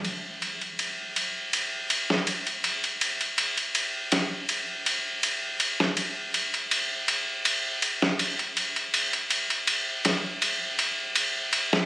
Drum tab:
RD |x-xxx-x-x-x-xxxx|xxxxx-x-x-x-x-x-|x-xxx-x-x-x-xxxx|xxxxx-x-x-x-x-x-|
SD |-----------o----|------o--------o|-----------o----|------o--------o|